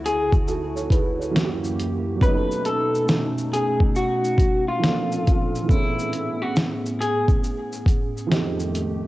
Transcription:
Already playing: D2 D3 E3 A3 C#4 D4 E4 F#4
0.06 G#4, closed hi-hat, shaker
0.32 kick, shaker
0.48 F#4 A4, shaker
0.76 A4 C#5, shaker
0.90 G#4 B4, kick, closed hi-hat, shaker
1.19 A4 C#5, shaker
1.31 F#2 E3 F#3 A#3 C#4 G4
1.36 E4 F#4, snare, shaker
1.44 G4
1.64 shaker
1.80 closed hi-hat, shaker
2.16 F#3 B3
2.21 B2 A3 C#4 D#4 B4, kick, shaker
2.26 D#4 G#4
2.35 A4
2.51 shaker
2.65 A4, closed hi-hat, shaker
2.95 shaker
3.08 snare, shaker
3.38 shaker
3.53 G#4, closed hi-hat, shaker
3.80 kick
3.96 F#4, shaker
4.24 shaker
4.38 kick, closed hi-hat, shaker
4.68 F4
4.79 A#2 F3 A#3 C4 D4 A4
4.84 D4 A4, snare, shaker
5.12 shaker
5.27 kick, closed hi-hat, shaker
5.55 shaker
5.63 E3 A3
5.69 A2 B3 C#4 E4 G#4, kick, shaker
5.73 C#4 G#4
5.99 shaker
6.13 closed hi-hat, shaker
6.42 F#4
6.56 snare, shaker
6.86 shaker
7.01 G#4, closed hi-hat, shaker
7.28 kick, shaker
7.44 shaker
7.72 shaker
7.86 kick, closed hi-hat, shaker
8.17 shaker
8.27 F2 D#3 F3 G#3 A3 C4 G4
8.32 A3 D#4 G4, snare, shaker
8.60 shaker
8.75 closed hi-hat, shaker

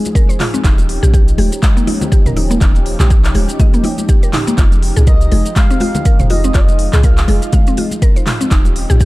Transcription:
Already playing: F3 G#3 D#4 G#4
0.05 closed hi-hat, high conga, shaker
0.15 A#4, kick, closed hi-hat, shaker
0.29 C5, closed hi-hat, shaker
0.40 F4, clap, mid tom, open hi-hat, muted conga
0.54 C4, closed hi-hat, high conga, shaker
0.64 D#1 C#4 D#4 G4, kick, clap, closed hi-hat, shaker
0.78 closed hi-hat, muted conga, shaker
0.89 open hi-hat
1.03 A#1 G4, closed hi-hat, mid tom, shaker
1.14 G4, kick, closed hi-hat, muted conga, shaker
1.28 closed hi-hat, shaker
1.38 D#1 G4, open hi-hat, high conga
1.52 closed hi-hat, muted conga, shaker
1.63 D#5, kick, clap, closed hi-hat, high conga, shaker
1.77 A#3, closed hi-hat, shaker
1.87 D#4, open hi-hat, muted conga, high conga
2.01 closed hi-hat, high conga, low conga, shaker
2.12 G4, kick, closed hi-hat, shaker
2.26 D#1 A#4, closed hi-hat, mid tom, low conga, shaker
2.36 D#4, open hi-hat, muted conga, low conga
2.50 A#3, closed hi-hat, high conga, shaker
2.61 D#1 D#4, kick, clap, closed hi-hat, low conga, shaker
2.75 closed hi-hat, muted conga, shaker
2.86 open hi-hat
2.99 A#1 G4, clap, closed hi-hat, mid tom, high conga, low conga, shaker
3.10 G4, kick, closed hi-hat, muted conga, shaker
3.25 clap, closed hi-hat, shaker
3.34 D#1 G4, open hi-hat, high conga
3.49 closed hi-hat, muted conga, shaker
3.60 D#5, kick, closed hi-hat, high conga, low conga, shaker
3.74 A#3, closed hi-hat, shaker
3.84 D#4, open hi-hat, muted conga, high conga
3.98 closed hi-hat, high conga, shaker
4.09 G4, kick, closed hi-hat, shaker
4.23 A#4, closed hi-hat, shaker
4.33 D#4, clap, mid tom, open hi-hat, muted conga, low conga
4.47 A#3, closed hi-hat, high conga, shaker
4.58 F1 G#3 F4, kick, clap, closed hi-hat, shaker
4.72 closed hi-hat, muted conga, shaker
4.83 open hi-hat
4.97 C2 G#4, closed hi-hat, mid tom, shaker
5.07 A#4 D#5, kick, closed hi-hat, muted conga, shaker
5.21 closed hi-hat, shaker
5.32 F1 G#4, open hi-hat, high conga
5.45 closed hi-hat, muted conga, shaker
5.56 F5, kick, clap, closed hi-hat, high conga, shaker
5.70 C4, closed hi-hat, shaker
5.80 F4, open hi-hat, muted conga, high conga
5.95 closed hi-hat, high conga, low conga, shaker
6.05 A#4, kick, closed hi-hat, shaker
6.19 F1 C5, closed hi-hat, mid tom, low conga, shaker
6.30 F4 D#5, open hi-hat, muted conga, low conga
6.44 C4, closed hi-hat, high conga, shaker
6.54 F1 F4 D#5, kick, clap, closed hi-hat, low conga, shaker
6.68 closed hi-hat, muted conga, shaker
6.79 open hi-hat
6.93 C2 G#4, clap, closed hi-hat, mid tom, high conga, low conga, shaker
7.03 A#4 F5, kick, closed hi-hat, muted conga, shaker
7.18 clap, closed hi-hat, shaker
7.28 F1 G#4, open hi-hat, high conga
7.42 closed hi-hat, muted conga, shaker
7.53 F5, kick, closed hi-hat, high conga, low conga, shaker
7.67 C4, closed hi-hat, shaker
7.77 F4, open hi-hat, muted conga, high conga
7.91 closed hi-hat, high conga, shaker
8.02 A#4, kick, closed hi-hat, shaker
8.16 C5, closed hi-hat, shaker
8.27 F4, clap, mid tom, open hi-hat, muted conga
8.41 C4, closed hi-hat, high conga, shaker
8.51 D#1 F3 C#4 D#4 G4, kick, clap, closed hi-hat, shaker
8.65 closed hi-hat, muted conga, shaker
8.76 open hi-hat
8.90 A#1 G4, closed hi-hat, mid tom, shaker
9.00 G4, kick, closed hi-hat, muted conga, shaker

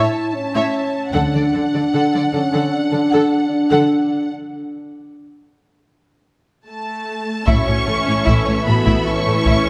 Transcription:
Already playing: E4 C#5 E5 A5
0.34 C#4
0.54 A2 C#5 E5
1.13 D2 D3 D4 A4 F#5
1.34 D3 A4 D5
1.53 D3 A4
1.73 D3 A4 D5
1.92 D3 A4 F#5
2.13 D3 A4 D5
2.32 D3 C#4 A4
2.53 D3 A4 F#5
2.72 D4
2.91 D3 A4
3.09 D3 A4 F#5
3.50 D4
3.70 D3 A4 F#5
6.68 A3 A5
7.46 A1 A2 E3 A3 C#4 E4 F#4 A4 E5 C#6, taiko
7.66 A2 C#4 C#5
7.86 A1 A2 A3 E4 A4
8.05 A2 C#4 C#5
8.24 A1 A2 E4 E5, taiko
8.28 A4
8.45 A2 C#4 C#5
8.65 A1 A2 A3 B3 F#4 A4 B5
8.84 A2 E4 E5, taiko
9.06 C#4 E4 C#6
9.25 A2 A3 A4
9.45 A1 A2 E4 E5, taiko

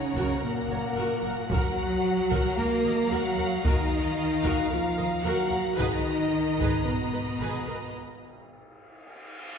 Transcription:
Already playing: C#3 C#4 C#5 F#5 A#5
0.16 F#1 F#4 A#4, taiko
0.42 F#1 A#2 A#3 A#4
0.69 F#1 A#4 C#5
0.96 F#1 F#4 A#4
1.23 F#1 A#4
1.49 D#2 F#3 F#4 A#4 F#5 A#5, taiko
2.30 D#2 F#4 A#4, taiko
2.57 D#2 A#3 A#4 F5 A#5
2.84 D#2 A#4 D#5
3.10 D#2 F#3 F#4 A#4 F#5
3.38 D#2 A#4
3.64 D#2 D#3 D#4 F#4 A#4 D#5, taiko
4.44 D#2 F#4 A#4, taiko
4.70 D#2 F3 F4 A#4 F5
4.98 D#2 A#4 D#5
5.24 D#2 F#3 F#4 A#4 F#5
5.50 D#2 A#4
5.77 G#1 D#3 D#4 G#4 B4 D#5 A#5, taiko
6.58 G#1 G#4 B4, taiko
6.85 G#1 B2 B3 A#4 B4
7.12 G#1 B4
7.40 G#1 G#4 B4
7.67 G#1 A#4 B4
7.94 reverse cymbal

